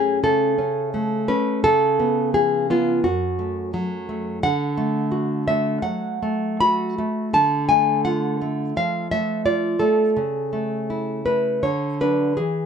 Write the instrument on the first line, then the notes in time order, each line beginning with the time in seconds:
nylon-string guitar
Already playing: F#2 A3 C#4 G#4
0.24 C#3 A4
0.58 C#4
0.94 A3
1.28 C#4 B4
1.64 C#3 A4
2.00 B3
2.34 F3 G#4
2.70 B3 F4
3.04 F#2 F#4
3.39 A3
3.74 F#3
4.09 A3
4.43 D3 F#5
4.78 A3
5.12 F#4
5.48 A3 E5
5.82 F#3 F#5
6.23 A3
6.61 F#4 B5
6.98 A3
7.33 D3 A5
7.69 A3 G#5
8.05 F4 F#5
8.42 A3
8.77 F3 F5
9.11 A3 E5
9.45 F4 D5
9.79 A3 A4
10.17 C#3
10.53 A3
10.90 E4
11.25 A3 B4
11.63 D3 C#5
12.01 F#3 D4 B4
12.37 E3 G#4